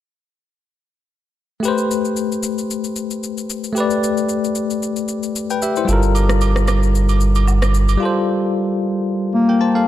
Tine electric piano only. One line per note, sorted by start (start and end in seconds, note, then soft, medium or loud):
1.60 3.70 A3 medium
1.60 3.72 G4 medium
1.65 3.73 B4 medium
1.65 3.74 C5 medium
3.72 5.83 A3 medium
3.72 5.32 G4 medium
3.78 5.33 B4 medium
3.78 5.34 D5 medium
5.51 5.62 B4 medium
5.51 5.62 G5 medium
5.62 5.76 G4 medium
5.62 5.76 E5 medium
5.77 6.02 E4 medium
5.77 6.02 C5 medium
5.85 7.95 G3 medium
5.85 7.96 F4 medium
5.90 7.98 A4 medium
5.90 7.99 A#4 medium
7.97 9.81 G3 medium
7.97 9.30 F4 medium
8.03 9.32 A4 medium
8.03 9.33 C5 medium
9.49 9.60 A#4 medium
9.49 9.60 G5 medium
9.61 9.75 C5 medium
9.61 9.74 A5 medium
9.75 9.87 A4 medium
9.75 9.86 F5 medium